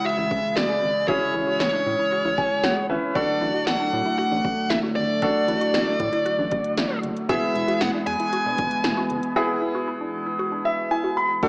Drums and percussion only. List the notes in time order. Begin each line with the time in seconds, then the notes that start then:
0.31 kick
0.57 snare
1.08 kick
1.60 snare
2.38 kick
2.63 snare
3.15 kick
3.67 snare
4.45 kick
4.70 snare
5.22 kick, closed hi-hat
5.48 closed hi-hat
5.61 closed hi-hat
5.74 snare, closed hi-hat
6.00 kick, closed hi-hat
6.13 closed hi-hat
6.26 closed hi-hat
6.51 kick, closed hi-hat
6.64 closed hi-hat
6.77 snare, closed hi-hat
7.03 closed hi-hat
7.16 closed hi-hat
7.29 kick, closed hi-hat
7.55 closed hi-hat
7.68 closed hi-hat
7.81 snare, closed hi-hat
8.07 closed hi-hat
8.20 closed hi-hat
8.33 closed hi-hat
8.58 kick, closed hi-hat
8.71 closed hi-hat
8.84 snare, closed hi-hat
9.10 closed hi-hat
9.23 closed hi-hat
11.43 kick, closed hi-hat, crash